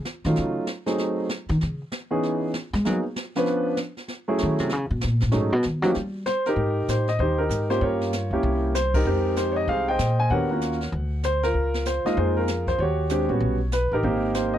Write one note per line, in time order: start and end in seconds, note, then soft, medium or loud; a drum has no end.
0.05 snare medium
0.24 0.36 D#3 medium
0.24 0.66 F#3 medium
0.24 0.66 A3 soft
0.24 0.66 C#4 soft
0.24 0.66 D#4 soft
0.24 0.66 F4 medium
0.24 snare soft
0.36 0.56 C#3 medium
0.36 brush sweep medium
0.36 snare medium
0.67 snare medium
0.86 1.27 F#3 medium
0.86 1.27 A3 soft
0.86 1.27 C4 medium
0.86 1.27 D#4 medium
0.86 1.27 G#4 medium
0.86 snare soft
0.98 brush sweep soft
0.98 snare soft
1.29 snare medium
1.48 1.60 D#3 loud
1.48 snare soft
1.61 1.80 C#3 medium
1.61 brush sweep soft
1.61 snare medium
1.92 snare medium
2.11 2.51 E3 medium
2.11 2.51 B3 medium
2.11 2.51 C#4 medium
2.11 2.51 D#4 medium
2.11 2.51 G#4 medium
2.23 brush sweep medium
2.23 snare soft
2.54 snare medium
2.73 2.86 G#3 loud
2.73 snare soft
2.85 3.02 F#3 soft
2.85 2.98 F#3 medium
2.85 3.02 A#3 soft
2.85 3.03 B3 soft
2.85 3.03 D#4 soft
2.85 3.03 G#4 medium
2.85 brush sweep medium
2.85 snare soft
3.16 snare medium
3.35 3.76 F3 medium
3.35 3.76 B3 medium
3.35 3.76 C#4 medium
3.35 3.76 D4 medium
3.35 3.76 B4 medium
3.35 snare soft
3.46 brush sweep soft
3.46 snare soft
3.77 snare medium
3.97 snare soft
4.08 brush sweep medium
4.08 snare soft
4.28 4.69 F#3 medium
4.28 4.68 A3 medium
4.28 4.69 C#4 medium
4.28 4.69 E4 medium
4.28 4.69 G#4 medium
4.38 snare medium
4.43 4.60 D#3 medium
4.58 4.73 C3 medium
4.58 snare soft
4.69 4.90 C#3 medium
4.69 brush sweep medium
4.69 snare soft
4.91 5.02 B2 medium
5.01 5.22 A#2 medium
5.01 snare medium
5.20 5.33 A2 medium
5.20 snare soft
5.32 5.53 G#2 medium
5.32 5.50 F#3 medium
5.32 5.50 A3 medium
5.32 5.50 C#4 medium
5.32 5.50 D#4 medium
5.32 5.50 G#4 medium
5.32 brush sweep medium
5.32 snare medium
5.53 5.64 B2 medium
5.63 5.82 D#3 medium
5.63 snare medium
5.82 5.94 F3 medium
5.82 5.94 F#3 loud
5.82 5.94 A#3 medium
5.82 5.94 C#4 soft
5.82 5.94 D#4 medium
5.82 5.94 G4 medium
5.82 snare soft
5.94 brush sweep medium
5.94 snare soft
6.26 6.46 C5 medium
6.26 snare medium
6.46 7.05 D#4 medium
6.46 7.05 G4 medium
6.46 6.90 A#4 medium
6.46 snare soft
6.56 6.85 G#2 medium
6.56 brush sweep soft
6.56 kick soft
6.88 7.17 A2 medium
6.88 7.09 C5 medium
6.88 snare medium
6.88 hi-hat pedal medium
7.07 7.20 D#5 medium
7.07 snare soft
7.19 7.48 D#2 medium
7.19 7.39 D#4 medium
7.19 7.40 G4 medium
7.19 7.38 C5 medium
7.19 brush sweep soft
7.19 kick soft
7.38 7.79 D#4 medium
7.38 7.69 G4 medium
7.38 7.71 A#4 medium
7.49 7.79 G#2 medium
7.49 snare medium
7.49 hi-hat pedal soft
7.70 8.10 A#3 medium
7.70 8.10 C#4 soft
7.70 7.82 F4 medium
7.70 8.11 G4 medium
7.70 7.81 C5 medium
7.70 snare soft
7.81 8.28 G2 medium
7.81 8.41 F4 medium
7.81 8.72 A#4 medium
7.81 8.78 C#5 medium
7.81 brush sweep soft
7.81 kick soft
8.01 snare soft
8.13 snare medium
8.13 hi-hat pedal medium
8.31 8.42 C#2 medium
8.31 8.73 A#3 medium
8.31 8.73 C#4 medium
8.31 8.73 E4 medium
8.31 8.73 G4 medium
8.43 9.03 C2 medium
8.43 brush sweep soft
8.43 kick soft
8.75 8.95 C5 medium
8.75 snare medium
8.75 hi-hat pedal medium
8.94 9.06 D#4 medium
8.94 9.06 G4 medium
8.94 9.38 A#4 medium
8.94 kick medium
8.94 ride medium
9.05 9.65 F2 medium
9.05 9.93 G#3 medium
9.05 9.93 C4 medium
9.05 9.93 D#4 medium
9.05 9.93 G4 medium
9.05 brush sweep soft
9.36 9.52 C5 medium
9.36 snare medium
9.36 hi-hat pedal soft
9.52 9.57 C#5 medium
9.56 9.67 D#5 medium
9.68 9.97 C2 medium
9.68 10.28 G#4 medium
9.68 9.89 C5 medium
9.68 9.87 F5 medium
9.68 brush sweep soft
9.68 kick soft
9.88 10.29 C5 medium
9.88 10.29 D#5 medium
9.88 10.20 G5 medium
9.99 10.28 A#2 medium
9.99 snare medium
9.99 hi-hat pedal medium
10.20 10.31 G#5 medium
10.30 10.89 D#2 medium
10.30 10.49 B3 medium
10.30 10.49 D4 soft
10.30 10.49 F#4 soft
10.30 10.49 G4 medium
10.30 10.90 A#4 medium
10.30 10.90 C#5 medium
10.30 11.27 F#5 medium
10.30 brush sweep soft
10.30 kick soft
10.51 10.78 A#3 medium
10.51 10.77 C#4 soft
10.51 10.78 F4 soft
10.51 10.78 F#4 medium
10.61 snare medium
10.61 hi-hat pedal soft
10.72 snare soft
10.80 snare soft
10.82 snare soft
10.92 11.52 D2 medium
10.92 brush sweep soft
10.92 kick soft
11.23 11.44 C5 medium
11.23 snare medium
11.23 hi-hat pedal medium
11.43 12.03 F4 medium
11.43 11.83 A#4 medium
11.43 snare soft
11.54 12.01 C#2 medium
11.54 brush sweep soft
11.54 kick soft
11.74 snare soft
11.85 12.06 C5 medium
11.85 snare medium
11.85 hi-hat pedal soft
12.05 12.46 G#3 medium
12.05 12.46 A#3 medium
12.05 12.46 D#4 medium
12.05 12.18 F4 medium
12.05 12.18 D#5 medium
12.05 muted upright bass stroke soft
12.05 snare soft
12.17 12.76 F2 medium
12.17 12.37 F4 medium
12.17 12.76 G#4 medium
12.17 12.37 C5 medium
12.17 brush sweep soft
12.17 kick soft
12.37 12.77 F4 medium
12.37 12.69 A#4 medium
12.48 snare medium
12.48 hi-hat pedal medium
12.67 12.80 C5 medium
12.67 kick soft
12.67 snare soft
12.78 13.26 D#2 medium
12.78 13.28 F#4 medium
12.78 13.10 G4 medium
12.78 13.69 C#5 medium
12.78 brush sweep medium
12.78 kick soft
13.09 13.28 G#3 medium
13.09 13.28 C4 medium
13.09 13.28 D4 medium
13.09 13.28 G4 medium
13.09 snare medium
13.09 hi-hat pedal medium
13.29 13.40 A#2 medium
13.29 13.57 G3 medium
13.29 13.57 B3 soft
13.29 13.57 C#4 soft
13.29 13.57 F#4 medium
13.40 13.88 B1 medium
13.40 brush sweep soft
13.40 kick soft
13.72 13.93 B4 medium
13.72 snare medium
13.72 hi-hat pedal medium
13.92 14.03 A1 medium
13.92 14.03 D#4 medium
13.92 14.03 G4 medium
13.92 14.32 A#4 medium
14.03 14.58 G#1 medium
14.03 14.58 A#3 medium
14.03 14.58 C4 medium
14.03 14.58 D#4 medium
14.03 14.58 G4 medium
14.03 brush sweep soft
14.03 kick soft
14.34 14.53 C5 medium
14.34 snare medium
14.34 hi-hat pedal medium
14.54 14.58 D#5 medium